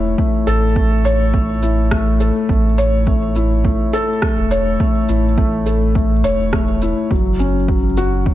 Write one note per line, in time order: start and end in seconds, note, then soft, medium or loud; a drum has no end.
0.00 0.15 E1 loud
0.00 0.18 A3 loud
0.00 1.63 E4 medium
0.00 0.47 A4 medium
0.00 1.05 C#5 medium
0.18 0.46 A3 medium
0.18 kick loud
0.47 2.31 A1 medium
0.47 0.64 A4 loud
0.47 shaker medium
0.76 0.93 A3 medium
0.76 kick loud
1.05 1.32 C#5 medium
1.05 shaker medium
1.34 1.50 A3 medium
1.34 kick loud
1.63 1.79 E4 medium
1.63 shaker medium
1.91 2.19 A3 loud
1.91 kick loud
1.91 cross-stick medium
2.20 2.48 A4 medium
2.20 shaker medium
2.49 3.76 A1 loud
2.49 2.66 A3 medium
2.49 kick loud
2.78 3.05 C#5 loud
2.78 shaker medium
3.07 3.34 A3 medium
3.07 kick loud
3.36 3.63 E4 medium
3.36 shaker medium
3.65 3.92 A3 medium
3.65 kick loud
3.93 4.10 A4 loud
3.93 shaker medium
4.22 4.39 A3 medium
4.22 kick loud
4.22 cross-stick medium
4.37 4.77 E1 loud
4.51 4.79 C#5 loud
4.51 shaker medium
4.80 4.96 A3 medium
4.80 kick loud
5.09 6.24 A1 medium
5.09 5.25 E4 medium
5.09 shaker medium
5.38 5.65 A3 loud
5.38 kick loud
5.66 5.94 A4 medium
5.66 shaker medium
5.95 6.12 A3 medium
5.95 kick loud
6.24 6.36 E1 medium
6.24 6.52 C#5 medium
6.24 shaker medium
6.39 6.93 E1 medium
6.53 6.80 A3 medium
6.53 kick loud
6.53 cross-stick medium
6.82 7.09 E4 medium
6.82 shaker medium
7.11 8.34 F#1 loud
7.11 7.38 F#3 medium
7.11 kick loud
7.39 7.56 C#4 medium
7.39 shaker medium
7.68 7.85 F#3 medium
7.68 kick loud
7.97 8.25 F#4 loud
7.97 shaker medium
8.26 8.34 F#3 medium
8.26 kick loud